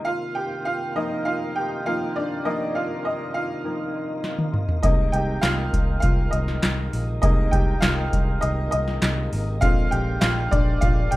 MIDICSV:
0, 0, Header, 1, 5, 480
1, 0, Start_track
1, 0, Tempo, 598205
1, 41, Time_signature, 4, 2, 24, 8
1, 8960, End_track
2, 0, Start_track
2, 0, Title_t, "Upright piano"
2, 0, Program_c, 0, 0
2, 0, Control_c, 0, 64, 127
2, 38, Note_on_c, 0, 77, 94
2, 50, Control_c, 0, 64, 0
2, 52, Note_on_c, 0, 65, 76
2, 210, Control_c, 0, 64, 127
2, 270, Note_off_c, 0, 65, 0
2, 280, Note_on_c, 0, 79, 86
2, 287, Note_off_c, 0, 77, 0
2, 290, Note_on_c, 0, 67, 68
2, 509, Note_off_c, 0, 67, 0
2, 523, Note_on_c, 0, 77, 84
2, 528, Note_off_c, 0, 79, 0
2, 531, Note_on_c, 0, 65, 68
2, 746, Note_off_c, 0, 77, 0
2, 750, Note_off_c, 0, 65, 0
2, 766, Note_on_c, 0, 51, 52
2, 768, Note_on_c, 0, 53, 45
2, 769, Note_on_c, 0, 75, 81
2, 774, Note_on_c, 0, 58, 52
2, 778, Note_on_c, 0, 63, 62
2, 989, Note_off_c, 0, 75, 0
2, 993, Note_off_c, 0, 63, 0
2, 1004, Note_on_c, 0, 77, 83
2, 1011, Note_on_c, 0, 65, 69
2, 1083, Note_off_c, 0, 51, 0
2, 1084, Note_off_c, 0, 53, 0
2, 1087, Note_off_c, 0, 58, 0
2, 1230, Note_off_c, 0, 65, 0
2, 1248, Note_on_c, 0, 79, 84
2, 1250, Note_off_c, 0, 77, 0
2, 1254, Note_on_c, 0, 67, 64
2, 1471, Note_off_c, 0, 67, 0
2, 1489, Note_on_c, 0, 51, 47
2, 1491, Note_on_c, 0, 53, 43
2, 1492, Note_off_c, 0, 79, 0
2, 1493, Note_on_c, 0, 58, 52
2, 1493, Note_on_c, 0, 77, 89
2, 1499, Note_on_c, 0, 65, 72
2, 1701, Note_off_c, 0, 51, 0
2, 1703, Note_off_c, 0, 53, 0
2, 1704, Note_off_c, 0, 58, 0
2, 1714, Note_off_c, 0, 65, 0
2, 1731, Note_on_c, 0, 74, 76
2, 1734, Note_off_c, 0, 77, 0
2, 1737, Note_on_c, 0, 62, 60
2, 1953, Note_off_c, 0, 62, 0
2, 1962, Note_on_c, 0, 51, 50
2, 1966, Note_on_c, 0, 53, 49
2, 1968, Note_on_c, 0, 75, 83
2, 1969, Note_on_c, 0, 58, 60
2, 1972, Note_on_c, 0, 63, 67
2, 1973, Note_off_c, 0, 74, 0
2, 2190, Note_off_c, 0, 63, 0
2, 2208, Note_on_c, 0, 77, 78
2, 2211, Note_off_c, 0, 75, 0
2, 2214, Note_on_c, 0, 65, 61
2, 2431, Note_off_c, 0, 65, 0
2, 2447, Note_on_c, 0, 75, 75
2, 2451, Note_off_c, 0, 77, 0
2, 2455, Note_on_c, 0, 63, 58
2, 2649, Note_off_c, 0, 51, 0
2, 2651, Note_off_c, 0, 53, 0
2, 2653, Note_off_c, 0, 58, 0
2, 2672, Note_off_c, 0, 63, 0
2, 2682, Note_on_c, 0, 77, 86
2, 2691, Note_off_c, 0, 75, 0
2, 2692, Note_on_c, 0, 65, 60
2, 2922, Note_on_c, 0, 51, 43
2, 2924, Note_on_c, 0, 53, 39
2, 2928, Note_on_c, 0, 58, 46
2, 3137, Note_off_c, 0, 51, 0
2, 3139, Note_off_c, 0, 53, 0
2, 3141, Note_off_c, 0, 58, 0
2, 3369, Note_off_c, 0, 77, 0
2, 3374, Note_off_c, 0, 65, 0
2, 3873, Note_on_c, 0, 75, 86
2, 3878, Note_on_c, 0, 48, 52
2, 3882, Note_on_c, 0, 56, 48
2, 3888, Note_on_c, 0, 58, 54
2, 3889, Control_c, 0, 64, 0
2, 3891, Note_on_c, 0, 63, 65
2, 4044, Control_c, 0, 64, 127
2, 4109, Note_off_c, 0, 63, 0
2, 4110, Note_on_c, 0, 79, 84
2, 4124, Note_off_c, 0, 75, 0
2, 4133, Note_on_c, 0, 67, 69
2, 4345, Note_on_c, 0, 77, 87
2, 4350, Note_off_c, 0, 67, 0
2, 4362, Note_off_c, 0, 79, 0
2, 4373, Note_on_c, 0, 65, 67
2, 4567, Note_off_c, 0, 48, 0
2, 4569, Note_off_c, 0, 56, 0
2, 4572, Note_off_c, 0, 58, 0
2, 4804, Note_off_c, 0, 77, 0
2, 4814, Note_off_c, 0, 65, 0
2, 4816, Note_on_c, 0, 77, 82
2, 4846, Note_on_c, 0, 65, 63
2, 4872, Note_off_c, 0, 77, 0
2, 4900, Note_off_c, 0, 65, 0
2, 5060, Note_on_c, 0, 75, 68
2, 5086, Note_on_c, 0, 63, 55
2, 5518, Note_off_c, 0, 75, 0
2, 5531, Note_off_c, 0, 63, 0
2, 5791, Note_on_c, 0, 75, 89
2, 5799, Note_on_c, 0, 48, 53
2, 5803, Note_on_c, 0, 56, 49
2, 5808, Note_on_c, 0, 58, 58
2, 5810, Note_on_c, 0, 63, 66
2, 6028, Note_off_c, 0, 63, 0
2, 6028, Note_on_c, 0, 79, 89
2, 6043, Note_off_c, 0, 75, 0
2, 6047, Note_on_c, 0, 67, 69
2, 6263, Note_on_c, 0, 77, 85
2, 6267, Note_off_c, 0, 67, 0
2, 6282, Note_off_c, 0, 79, 0
2, 6285, Note_on_c, 0, 65, 66
2, 6488, Note_off_c, 0, 48, 0
2, 6489, Note_off_c, 0, 56, 0
2, 6492, Note_off_c, 0, 58, 0
2, 6730, Note_off_c, 0, 65, 0
2, 6748, Note_on_c, 0, 75, 81
2, 6766, Note_off_c, 0, 77, 0
2, 6766, Note_on_c, 0, 63, 62
2, 6977, Note_off_c, 0, 75, 0
2, 6987, Note_off_c, 0, 63, 0
2, 6989, Note_on_c, 0, 75, 84
2, 7005, Note_on_c, 0, 63, 57
2, 7443, Note_off_c, 0, 75, 0
2, 7450, Note_off_c, 0, 63, 0
2, 7710, Note_on_c, 0, 77, 105
2, 7713, Note_on_c, 0, 50, 53
2, 7718, Note_on_c, 0, 56, 49
2, 7721, Note_on_c, 0, 60, 61
2, 7725, Note_on_c, 0, 65, 80
2, 7731, Control_c, 0, 64, 0
2, 7882, Control_c, 0, 64, 127
2, 7946, Note_off_c, 0, 65, 0
2, 7951, Note_on_c, 0, 79, 87
2, 7963, Note_off_c, 0, 77, 0
2, 7964, Note_on_c, 0, 67, 69
2, 8185, Note_off_c, 0, 67, 0
2, 8191, Note_on_c, 0, 77, 90
2, 8202, Note_on_c, 0, 65, 70
2, 8203, Note_off_c, 0, 79, 0
2, 8405, Note_off_c, 0, 50, 0
2, 8407, Note_off_c, 0, 56, 0
2, 8409, Note_off_c, 0, 60, 0
2, 8425, Note_off_c, 0, 65, 0
2, 8435, Note_on_c, 0, 74, 83
2, 8443, Note_off_c, 0, 77, 0
2, 8447, Note_on_c, 0, 62, 61
2, 8667, Note_off_c, 0, 62, 0
2, 8674, Note_on_c, 0, 77, 94
2, 8685, Note_off_c, 0, 74, 0
2, 8687, Note_on_c, 0, 65, 67
2, 8908, Note_off_c, 0, 65, 0
2, 8913, Note_on_c, 0, 79, 86
2, 8924, Note_on_c, 0, 67, 69
2, 8925, Note_off_c, 0, 77, 0
2, 8960, Note_off_c, 0, 67, 0
2, 8960, Note_off_c, 0, 79, 0
2, 8960, End_track
3, 0, Start_track
3, 0, Title_t, "Tonewheel organ"
3, 0, Program_c, 1, 16
3, 0, Note_on_c, 1, 48, 57
3, 0, Note_on_c, 1, 51, 60
3, 40, Note_on_c, 1, 58, 58
3, 41, Note_on_c, 1, 65, 66
3, 3848, Note_off_c, 1, 65, 0
3, 3879, Note_on_c, 1, 56, 55
3, 7687, Note_off_c, 1, 51, 0
3, 7688, Note_off_c, 1, 48, 0
3, 7709, Note_on_c, 1, 62, 73
3, 8960, Note_off_c, 1, 56, 0
3, 8960, Note_off_c, 1, 58, 0
3, 8960, Note_off_c, 1, 62, 0
3, 8960, End_track
4, 0, Start_track
4, 0, Title_t, "Picked electric bass"
4, 0, Program_c, 2, 34
4, 3879, Note_on_c, 2, 36, 94
4, 4076, Note_off_c, 2, 36, 0
4, 4117, Note_on_c, 2, 36, 82
4, 4315, Note_off_c, 2, 36, 0
4, 4358, Note_on_c, 2, 36, 87
4, 4556, Note_off_c, 2, 36, 0
4, 4600, Note_on_c, 2, 36, 87
4, 4797, Note_off_c, 2, 36, 0
4, 4839, Note_on_c, 2, 36, 93
4, 5036, Note_off_c, 2, 36, 0
4, 5084, Note_on_c, 2, 36, 84
4, 5279, Note_off_c, 2, 36, 0
4, 5327, Note_on_c, 2, 36, 89
4, 5521, Note_off_c, 2, 36, 0
4, 5564, Note_on_c, 2, 34, 80
4, 5759, Note_off_c, 2, 34, 0
4, 5800, Note_on_c, 2, 36, 88
4, 5997, Note_off_c, 2, 36, 0
4, 6038, Note_on_c, 2, 36, 83
4, 6236, Note_off_c, 2, 36, 0
4, 6285, Note_on_c, 2, 36, 79
4, 6480, Note_off_c, 2, 36, 0
4, 6520, Note_on_c, 2, 36, 88
4, 6717, Note_off_c, 2, 36, 0
4, 6766, Note_on_c, 2, 36, 91
4, 6961, Note_off_c, 2, 36, 0
4, 7008, Note_on_c, 2, 36, 86
4, 7201, Note_off_c, 2, 36, 0
4, 7243, Note_on_c, 2, 36, 95
4, 7439, Note_off_c, 2, 36, 0
4, 7485, Note_on_c, 2, 32, 82
4, 7719, Note_off_c, 2, 32, 0
4, 7719, Note_on_c, 2, 34, 92
4, 7917, Note_off_c, 2, 34, 0
4, 7965, Note_on_c, 2, 34, 85
4, 8160, Note_off_c, 2, 34, 0
4, 8200, Note_on_c, 2, 34, 88
4, 8397, Note_off_c, 2, 34, 0
4, 8441, Note_on_c, 2, 34, 91
4, 8638, Note_off_c, 2, 34, 0
4, 8681, Note_on_c, 2, 34, 96
4, 8878, Note_off_c, 2, 34, 0
4, 8925, Note_on_c, 2, 34, 88
4, 8960, Note_off_c, 2, 34, 0
4, 8960, End_track
5, 0, Start_track
5, 0, Title_t, "Drums"
5, 3401, Note_on_c, 9, 38, 53
5, 3481, Note_off_c, 9, 38, 0
5, 3518, Note_on_c, 9, 48, 57
5, 3598, Note_off_c, 9, 48, 0
5, 3639, Note_on_c, 9, 45, 76
5, 3719, Note_off_c, 9, 45, 0
5, 3760, Note_on_c, 9, 43, 85
5, 3840, Note_off_c, 9, 43, 0
5, 3879, Note_on_c, 9, 42, 90
5, 3880, Note_on_c, 9, 36, 103
5, 3959, Note_off_c, 9, 42, 0
5, 3961, Note_off_c, 9, 36, 0
5, 4120, Note_on_c, 9, 42, 69
5, 4200, Note_off_c, 9, 42, 0
5, 4356, Note_on_c, 9, 38, 104
5, 4361, Note_on_c, 9, 42, 81
5, 4363, Note_on_c, 9, 39, 89
5, 4436, Note_off_c, 9, 38, 0
5, 4441, Note_off_c, 9, 42, 0
5, 4443, Note_off_c, 9, 39, 0
5, 4601, Note_on_c, 9, 36, 77
5, 4604, Note_on_c, 9, 42, 71
5, 4681, Note_off_c, 9, 36, 0
5, 4684, Note_off_c, 9, 42, 0
5, 4834, Note_on_c, 9, 42, 89
5, 4840, Note_on_c, 9, 36, 90
5, 4914, Note_off_c, 9, 42, 0
5, 4920, Note_off_c, 9, 36, 0
5, 5077, Note_on_c, 9, 42, 80
5, 5157, Note_off_c, 9, 42, 0
5, 5201, Note_on_c, 9, 38, 35
5, 5281, Note_off_c, 9, 38, 0
5, 5318, Note_on_c, 9, 42, 86
5, 5319, Note_on_c, 9, 38, 112
5, 5326, Note_on_c, 9, 39, 91
5, 5398, Note_off_c, 9, 42, 0
5, 5399, Note_off_c, 9, 38, 0
5, 5406, Note_off_c, 9, 39, 0
5, 5563, Note_on_c, 9, 46, 69
5, 5644, Note_off_c, 9, 46, 0
5, 5799, Note_on_c, 9, 42, 87
5, 5801, Note_on_c, 9, 36, 109
5, 5880, Note_off_c, 9, 42, 0
5, 5881, Note_off_c, 9, 36, 0
5, 6039, Note_on_c, 9, 36, 85
5, 6040, Note_on_c, 9, 42, 69
5, 6119, Note_off_c, 9, 36, 0
5, 6121, Note_off_c, 9, 42, 0
5, 6277, Note_on_c, 9, 38, 107
5, 6282, Note_on_c, 9, 42, 85
5, 6284, Note_on_c, 9, 39, 82
5, 6358, Note_off_c, 9, 38, 0
5, 6363, Note_off_c, 9, 42, 0
5, 6365, Note_off_c, 9, 39, 0
5, 6522, Note_on_c, 9, 36, 83
5, 6524, Note_on_c, 9, 42, 71
5, 6602, Note_off_c, 9, 36, 0
5, 6605, Note_off_c, 9, 42, 0
5, 6760, Note_on_c, 9, 42, 88
5, 6840, Note_off_c, 9, 42, 0
5, 6999, Note_on_c, 9, 42, 82
5, 7079, Note_off_c, 9, 42, 0
5, 7122, Note_on_c, 9, 38, 33
5, 7203, Note_off_c, 9, 38, 0
5, 7238, Note_on_c, 9, 42, 91
5, 7239, Note_on_c, 9, 38, 112
5, 7246, Note_on_c, 9, 39, 92
5, 7318, Note_off_c, 9, 42, 0
5, 7319, Note_off_c, 9, 38, 0
5, 7326, Note_off_c, 9, 39, 0
5, 7484, Note_on_c, 9, 46, 65
5, 7564, Note_off_c, 9, 46, 0
5, 7719, Note_on_c, 9, 42, 92
5, 7721, Note_on_c, 9, 36, 111
5, 7799, Note_off_c, 9, 42, 0
5, 7801, Note_off_c, 9, 36, 0
5, 7962, Note_on_c, 9, 42, 68
5, 8042, Note_off_c, 9, 42, 0
5, 8197, Note_on_c, 9, 38, 108
5, 8202, Note_on_c, 9, 42, 84
5, 8204, Note_on_c, 9, 39, 90
5, 8277, Note_off_c, 9, 38, 0
5, 8282, Note_off_c, 9, 42, 0
5, 8284, Note_off_c, 9, 39, 0
5, 8443, Note_on_c, 9, 36, 86
5, 8446, Note_on_c, 9, 42, 76
5, 8523, Note_off_c, 9, 36, 0
5, 8526, Note_off_c, 9, 42, 0
5, 8681, Note_on_c, 9, 42, 88
5, 8683, Note_on_c, 9, 36, 93
5, 8761, Note_off_c, 9, 42, 0
5, 8763, Note_off_c, 9, 36, 0
5, 8921, Note_on_c, 9, 42, 83
5, 8960, Note_off_c, 9, 42, 0
5, 8960, End_track
0, 0, End_of_file